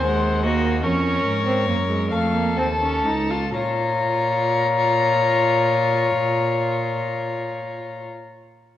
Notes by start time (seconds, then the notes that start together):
Already playing: D#2 C5
0.06 G#3 F#5
0.44 A#3 F#4 D#5
0.83 F2 C#4 A#4 C#5
1.25 G#2
1.46 C4
1.67 F#2 A#3
1.89 G#3
2.11 F2 A3 A4 F5
2.34 A#3
2.56 D#2 C4 A5
2.81 C#4
3.04 C#2 D#4 A5
3.30 F4
3.54 A#2 F4 C#5 A#5